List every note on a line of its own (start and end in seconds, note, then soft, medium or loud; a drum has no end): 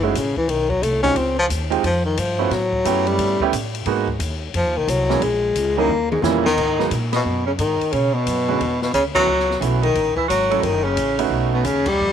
0.00 0.14 F#1 medium
0.00 0.19 G#2 medium
0.00 0.13 G#3 medium
0.00 0.13 A3 medium
0.00 0.14 C#4 medium
0.00 0.14 E4 medium
0.00 0.14 F#4 medium
0.15 0.35 A1 loud
0.15 0.36 C#3 medium
0.15 kick soft
0.15 hi-hat pedal medium
0.15 ride medium
0.36 0.51 E3 medium
0.36 muted upright bass stroke soft
0.36 kick medium
0.48 0.81 B1 medium
0.48 0.71 D#3 medium
0.48 kick soft
0.48 ride medium
0.69 0.85 F#3 medium
0.69 kick medium
0.82 1.15 C2 medium
0.82 1.02 A3 medium
0.82 kick soft
0.82 hi-hat pedal medium
0.82 ride medium
1.03 1.14 G#3 medium
1.03 1.14 C4 medium
1.03 1.18 C#4 loud
1.03 1.14 D#4 medium
1.03 1.14 F4 medium
1.03 1.14 G4 medium
1.03 kick medium
1.03 ride medium
1.15 1.48 C#2 medium
1.15 1.38 C4 loud
1.15 ride medium
1.39 1.46 F3 loud
1.50 1.82 D#2 loud
1.50 kick soft
1.50 hi-hat pedal medium
1.50 ride medium
1.70 1.82 G#3 medium
1.70 1.82 C4 medium
1.70 1.82 D#4 medium
1.70 1.82 F4 medium
1.70 1.82 G4 medium
1.70 ride soft
1.83 2.16 F2 medium
1.83 2.05 F3 loud
1.83 kick soft
1.83 ride medium
2.05 2.21 D#3 medium
2.17 2.50 G2 loud
2.17 2.54 F3 medium
2.17 kick soft
2.17 hi-hat pedal medium
2.17 ride medium
2.39 2.50 A3 medium
2.39 2.50 B3 medium
2.39 2.50 C#4 medium
2.39 2.50 E4 medium
2.39 2.50 F#4 medium
2.50 2.83 A2 medium
2.50 3.09 F#3 loud
2.50 kick soft
2.50 snare soft
2.50 ride medium
2.73 kick medium
2.85 3.18 F#2 loud
2.85 3.36 A3 medium
2.85 3.36 B3 medium
2.85 3.36 C#4 medium
2.85 3.36 E4 medium
2.85 3.36 G4 medium
2.85 hi-hat pedal medium
2.85 ride medium
3.07 3.53 G3 loud
3.07 ride soft
3.18 3.39 G2 medium
3.18 kick soft
3.18 ride medium
3.40 3.52 A3 medium
3.40 3.52 B3 medium
3.40 3.52 C#4 medium
3.40 3.52 E4 medium
3.40 3.52 G4 loud
3.40 muted upright bass stroke soft
3.40 kick medium
3.52 3.85 A2 loud
3.52 kick soft
3.52 hi-hat pedal medium
3.52 ride medium
3.75 ride medium
3.85 4.19 G#2 loud
3.85 4.06 G#3 medium
3.85 4.06 A#3 medium
3.85 4.06 B3 medium
3.85 4.06 D#4 medium
3.85 4.06 F#4 medium
3.85 kick soft
3.85 ride medium
4.08 kick medium
4.19 4.52 D#2 loud
4.19 kick soft
4.19 hi-hat pedal medium
4.19 ride medium
4.54 4.65 F2 medium
4.54 4.78 F3 medium
4.54 kick soft
4.54 ride medium
4.65 4.75 D#2 medium
4.76 4.87 C2 medium
4.76 4.91 D#3 medium
4.88 5.20 C2 loud
4.88 5.25 F#3 loud
4.88 kick soft
4.88 hi-hat pedal medium
4.88 ride medium
5.10 5.20 E3 medium
5.10 5.20 G#3 medium
5.10 5.20 A#3 medium
5.10 5.20 C#4 medium
5.10 5.21 E4 medium
5.10 snare medium
5.21 5.54 A#1 medium
5.21 5.78 G#3 loud
5.21 kick soft
5.21 ride medium
5.55 5.87 C#2 loud
5.55 kick soft
5.55 hi-hat pedal medium
5.55 ride medium
5.77 5.88 E3 medium
5.77 5.88 G3 medium
5.77 5.88 A#3 medium
5.77 6.09 A#3 loud
5.77 5.88 C#4 medium
5.77 5.88 D#4 medium
5.88 6.21 D#2 medium
5.88 high tom medium
6.11 6.24 G#2 medium
6.11 6.25 G#3 medium
6.11 high tom medium
6.22 6.55 E2 loud
6.22 6.44 A#2 medium
6.22 6.43 E3 medium
6.22 6.43 G3 medium
6.22 6.43 A#3 medium
6.22 6.44 A#3 medium
6.22 6.43 C#4 medium
6.22 6.43 E4 loud
6.22 snare medium
6.22 hi-hat pedal medium
6.45 6.88 D#3 loud
6.45 6.87 D#4 medium
6.45 snare loud
6.57 6.90 G#2 medium
6.57 kick medium
6.57 crash medium
6.79 6.90 F#3 medium
6.79 6.90 G#3 medium
6.79 6.90 A#3 medium
6.79 6.90 B3 medium
6.79 6.90 D#4 medium
6.79 snare soft
6.91 7.23 A#2 medium
6.91 kick soft
6.91 hi-hat pedal medium
6.91 ride medium
7.12 7.45 B2 medium
7.12 7.44 B3 medium
7.12 snare medium
7.12 ride medium
7.25 7.57 F#2 medium
7.46 7.52 C#3 medium
7.46 7.52 C#4 medium
7.58 7.79 G#2 medium
7.58 7.95 D#3 medium
7.58 7.93 D#4 medium
7.58 kick soft
7.58 hi-hat pedal medium
7.58 ride medium
7.81 muted upright bass stroke soft
7.81 ride soft
7.92 8.25 B2 medium
7.92 8.16 C#3 loud
7.92 8.15 C#4 medium
7.92 kick soft
7.92 ride medium
8.13 8.82 B2 medium
8.13 8.80 B3 medium
8.26 8.59 F#2 medium
8.26 kick soft
8.26 hi-hat pedal medium
8.26 ride medium
8.48 8.59 D3 medium
8.48 8.59 G#3 medium
8.48 8.59 B3 medium
8.48 8.59 C#4 medium
8.48 8.59 F#4 medium
8.60 8.93 E2 medium
8.60 kick soft
8.60 ride medium
8.81 8.93 B2 medium
8.81 8.92 B3 medium
8.81 snare medium
8.94 9.26 D2 loud
8.94 9.04 C#3 medium
8.94 9.04 C#4 medium
8.94 kick soft
8.94 hi-hat pedal medium
8.94 ride medium
9.14 9.26 E3 medium
9.14 9.58 F#3 loud
9.14 9.26 A3 medium
9.14 9.26 B3 medium
9.14 9.26 C#4 medium
9.14 9.58 F#4 medium
9.14 9.27 F#4 medium
9.14 kick medium
9.14 crash medium
9.27 9.60 C#2 medium
9.39 snare soft
9.50 snare soft
9.60 9.94 B1 loud
9.60 9.80 E3 medium
9.60 9.81 A3 medium
9.60 9.81 B3 medium
9.60 9.81 C#4 medium
9.60 9.81 F#4 medium
9.60 kick soft
9.60 hi-hat pedal medium
9.60 ride medium
9.82 10.14 D#3 loud
9.82 10.14 D#4 medium
9.82 ride soft
9.95 10.15 A1 medium
9.95 kick soft
9.95 ride medium
10.16 10.28 E3 medium
10.16 10.27 E4 medium
10.16 muted upright bass stroke soft
10.16 kick medium
10.28 10.62 G#1 loud
10.28 10.64 F#3 medium
10.28 10.62 F#4 medium
10.28 hi-hat pedal medium
10.28 ride medium
10.50 10.61 F#3 medium
10.50 10.62 A3 medium
10.50 10.62 C#4 medium
10.50 10.62 E4 medium
10.50 10.62 A4 medium
10.50 ride medium
10.61 10.96 F#1 medium
10.61 10.86 D#3 loud
10.61 10.84 D#4 medium
10.61 kick soft
10.61 ride medium
10.83 11.23 C#3 loud
10.83 11.23 C#4 medium
10.97 11.29 A1 medium
10.97 kick soft
10.97 hi-hat pedal medium
10.97 ride medium
11.18 11.62 A3 medium
11.18 11.62 B3 medium
11.18 11.62 C#4 medium
11.18 11.62 D#4 medium
11.18 11.63 F#4 medium
11.18 ride medium
11.30 11.63 B1 medium
11.30 kick soft
11.53 11.67 B2 medium
11.53 11.67 B3 medium
11.64 11.97 D#2 medium
11.64 11.90 C#3 loud
11.64 11.88 C#4 medium
11.64 kick soft
11.64 hi-hat pedal medium
11.64 ride medium
11.86 12.12 G3 loud
11.86 12.12 G4 loud
11.86 kick medium
11.86 crash medium
12.00 12.12 F2 medium